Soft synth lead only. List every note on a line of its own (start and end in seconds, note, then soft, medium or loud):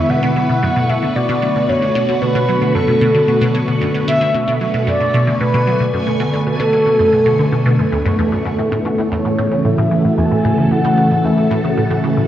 0.00 0.11 E5 loud
0.10 0.91 F#5 loud
0.90 1.17 E5 loud
1.16 1.71 D5 loud
1.69 2.21 C#5 loud
2.22 2.76 B4 loud
2.75 3.55 A4 medium
4.08 4.57 E5 loud
4.87 5.37 D5 loud
5.41 6.16 B4 loud
6.47 8.02 A4 loud
9.12 9.67 C#5 medium
9.65 10.20 E5 loud
10.18 10.27 G#5 loud
10.26 10.34 A5 medium
10.33 10.73 G#5 loud
10.72 11.26 F#5 loud
11.25 11.78 E5 medium